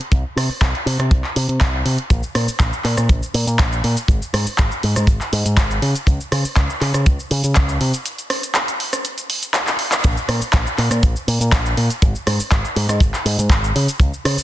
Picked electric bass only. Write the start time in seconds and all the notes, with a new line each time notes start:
0.12 C2
0.36 C3
0.49 muted picked electric bass stroke
0.61 C2
0.86 C3
0.99 C3
1.11 C2
1.36 C3
1.49 C3
1.61 C2
1.85 C3
2.10 A#1
2.35 A#2
2.48 muted picked electric bass stroke
2.60 A#1
2.84 A#2
2.98 A#2
3.09 A#1
3.34 A#2
3.47 A#2
3.59 A#1
3.84 A#2
4.08 G#1
4.34 G#2
4.47 muted picked electric bass stroke
4.59 G#1
4.83 G#2
4.97 G#2
5.07 G#1
5.33 G#2
5.45 G#2
5.57 G#1
5.82 C#3
6.07 C#2
6.32 C#3
6.45 muted picked electric bass stroke
6.56 C#2
6.81 C#3
6.94 C#3
7.06 C#2
7.31 C#3
7.44 C#3
7.57 C#2
7.81 C3
10.04 A#1
10.28 A#2
10.41 muted picked electric bass stroke
10.53 A#1
10.78 A#2
10.90 A#2
11.03 A#1
11.28 A#2
11.40 A#2
11.52 A#1
11.77 A#2
12.02 G#1
12.27 G#2
12.40 muted picked electric bass stroke
12.52 G#1
12.76 G#2
12.89 G#2
13.01 G#1
13.25 G#2
13.38 G#2
13.50 G#1
13.76 C#3
13.99 C#2
14.25 C#3
14.38 muted picked electric bass stroke